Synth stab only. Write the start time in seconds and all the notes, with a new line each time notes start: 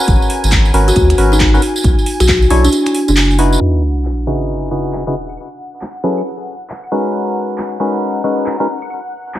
Already playing: C#4 F#4 A#4 B4
0.74 C#4 F#4 A#4 B4
1.18 C#4 F#4 A#4 B4
1.54 C#4 F#4 A#4 B4
2.50 D4 E4 A4 C#5
3.39 D#4 E4 F#4 B4
4.27 C#3 D#4 E4 F#4 G#4 B4
4.71 C#3 D#4 E4 F#4 G#4 B4
5.07 C#3 D#4 E4 F#4 G#4 B4
6.03 F#3 C#4 E4 G#4 A4 B4
6.92 G#3 C#4 D#4 F#4 A#4 B4
7.80 G#3 C#4 D#4 F#4 A#4 B4
8.24 G#3 C#4 D#4 F#4 A#4 B4
8.60 G#3 C#4 D#4 F#4 A#4 B4